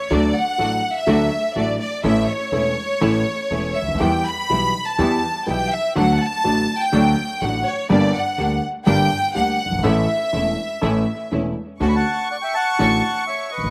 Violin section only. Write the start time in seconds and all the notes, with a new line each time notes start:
Already playing: C#5
0.11 D5
0.35 F#5
0.96 E5
1.56 D5
1.80 D5
2.04 E5
2.28 C#5
3.76 E5
4.01 G5
4.26 B5
4.87 A5
5.47 G5
5.72 E5
5.97 F#5
6.21 A5
6.81 G5
7.43 F#5
7.66 C#5
7.90 D5
8.14 F#5
8.86 G5
9.36 F#5
9.85 E5
11.82 C#6